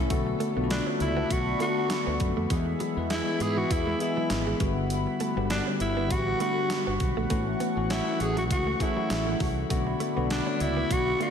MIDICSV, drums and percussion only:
0, 0, Header, 1, 2, 480
1, 0, Start_track
1, 0, Tempo, 600000
1, 83, Time_signature, 4, 2, 24, 8
1, 9042, End_track
2, 0, Start_track
2, 0, Title_t, "Drums"
2, 82, Note_on_c, 9, 36, 109
2, 82, Note_on_c, 9, 42, 88
2, 162, Note_off_c, 9, 36, 0
2, 162, Note_off_c, 9, 42, 0
2, 323, Note_on_c, 9, 42, 72
2, 403, Note_off_c, 9, 42, 0
2, 564, Note_on_c, 9, 42, 89
2, 566, Note_on_c, 9, 38, 102
2, 644, Note_off_c, 9, 42, 0
2, 646, Note_off_c, 9, 38, 0
2, 803, Note_on_c, 9, 42, 67
2, 883, Note_off_c, 9, 42, 0
2, 1044, Note_on_c, 9, 36, 93
2, 1044, Note_on_c, 9, 42, 101
2, 1124, Note_off_c, 9, 36, 0
2, 1124, Note_off_c, 9, 42, 0
2, 1282, Note_on_c, 9, 42, 68
2, 1362, Note_off_c, 9, 42, 0
2, 1519, Note_on_c, 9, 38, 115
2, 1522, Note_on_c, 9, 42, 102
2, 1599, Note_off_c, 9, 38, 0
2, 1602, Note_off_c, 9, 42, 0
2, 1759, Note_on_c, 9, 42, 64
2, 1762, Note_on_c, 9, 36, 89
2, 1839, Note_off_c, 9, 42, 0
2, 1842, Note_off_c, 9, 36, 0
2, 2001, Note_on_c, 9, 42, 90
2, 2002, Note_on_c, 9, 36, 100
2, 2081, Note_off_c, 9, 42, 0
2, 2082, Note_off_c, 9, 36, 0
2, 2242, Note_on_c, 9, 42, 70
2, 2322, Note_off_c, 9, 42, 0
2, 2481, Note_on_c, 9, 42, 93
2, 2484, Note_on_c, 9, 38, 103
2, 2561, Note_off_c, 9, 42, 0
2, 2564, Note_off_c, 9, 38, 0
2, 2723, Note_on_c, 9, 42, 69
2, 2803, Note_off_c, 9, 42, 0
2, 2964, Note_on_c, 9, 36, 94
2, 2965, Note_on_c, 9, 42, 101
2, 3044, Note_off_c, 9, 36, 0
2, 3045, Note_off_c, 9, 42, 0
2, 3203, Note_on_c, 9, 42, 71
2, 3283, Note_off_c, 9, 42, 0
2, 3440, Note_on_c, 9, 38, 112
2, 3442, Note_on_c, 9, 42, 99
2, 3520, Note_off_c, 9, 38, 0
2, 3522, Note_off_c, 9, 42, 0
2, 3681, Note_on_c, 9, 42, 69
2, 3683, Note_on_c, 9, 36, 96
2, 3761, Note_off_c, 9, 42, 0
2, 3763, Note_off_c, 9, 36, 0
2, 3922, Note_on_c, 9, 42, 90
2, 4002, Note_off_c, 9, 42, 0
2, 4161, Note_on_c, 9, 42, 70
2, 4241, Note_off_c, 9, 42, 0
2, 4401, Note_on_c, 9, 42, 91
2, 4403, Note_on_c, 9, 38, 101
2, 4481, Note_off_c, 9, 42, 0
2, 4483, Note_off_c, 9, 38, 0
2, 4642, Note_on_c, 9, 42, 71
2, 4722, Note_off_c, 9, 42, 0
2, 4884, Note_on_c, 9, 36, 91
2, 4884, Note_on_c, 9, 42, 103
2, 4964, Note_off_c, 9, 36, 0
2, 4964, Note_off_c, 9, 42, 0
2, 5122, Note_on_c, 9, 42, 73
2, 5202, Note_off_c, 9, 42, 0
2, 5359, Note_on_c, 9, 38, 111
2, 5362, Note_on_c, 9, 42, 104
2, 5439, Note_off_c, 9, 38, 0
2, 5442, Note_off_c, 9, 42, 0
2, 5600, Note_on_c, 9, 42, 68
2, 5602, Note_on_c, 9, 36, 85
2, 5680, Note_off_c, 9, 42, 0
2, 5682, Note_off_c, 9, 36, 0
2, 5841, Note_on_c, 9, 42, 89
2, 5842, Note_on_c, 9, 36, 108
2, 5921, Note_off_c, 9, 42, 0
2, 5922, Note_off_c, 9, 36, 0
2, 6082, Note_on_c, 9, 42, 71
2, 6162, Note_off_c, 9, 42, 0
2, 6322, Note_on_c, 9, 42, 95
2, 6324, Note_on_c, 9, 38, 101
2, 6402, Note_off_c, 9, 42, 0
2, 6404, Note_off_c, 9, 38, 0
2, 6562, Note_on_c, 9, 42, 73
2, 6642, Note_off_c, 9, 42, 0
2, 6696, Note_on_c, 9, 42, 50
2, 6776, Note_off_c, 9, 42, 0
2, 6804, Note_on_c, 9, 36, 92
2, 6806, Note_on_c, 9, 42, 104
2, 6884, Note_off_c, 9, 36, 0
2, 6886, Note_off_c, 9, 42, 0
2, 7041, Note_on_c, 9, 36, 89
2, 7044, Note_on_c, 9, 42, 69
2, 7121, Note_off_c, 9, 36, 0
2, 7124, Note_off_c, 9, 42, 0
2, 7281, Note_on_c, 9, 38, 112
2, 7284, Note_on_c, 9, 42, 100
2, 7361, Note_off_c, 9, 38, 0
2, 7364, Note_off_c, 9, 42, 0
2, 7522, Note_on_c, 9, 46, 68
2, 7523, Note_on_c, 9, 36, 90
2, 7602, Note_off_c, 9, 46, 0
2, 7603, Note_off_c, 9, 36, 0
2, 7763, Note_on_c, 9, 36, 103
2, 7763, Note_on_c, 9, 42, 88
2, 7843, Note_off_c, 9, 36, 0
2, 7843, Note_off_c, 9, 42, 0
2, 8003, Note_on_c, 9, 42, 73
2, 8083, Note_off_c, 9, 42, 0
2, 8244, Note_on_c, 9, 42, 93
2, 8246, Note_on_c, 9, 38, 102
2, 8324, Note_off_c, 9, 42, 0
2, 8326, Note_off_c, 9, 38, 0
2, 8483, Note_on_c, 9, 42, 73
2, 8563, Note_off_c, 9, 42, 0
2, 8725, Note_on_c, 9, 36, 89
2, 8726, Note_on_c, 9, 42, 109
2, 8805, Note_off_c, 9, 36, 0
2, 8806, Note_off_c, 9, 42, 0
2, 8965, Note_on_c, 9, 42, 72
2, 9042, Note_off_c, 9, 42, 0
2, 9042, End_track
0, 0, End_of_file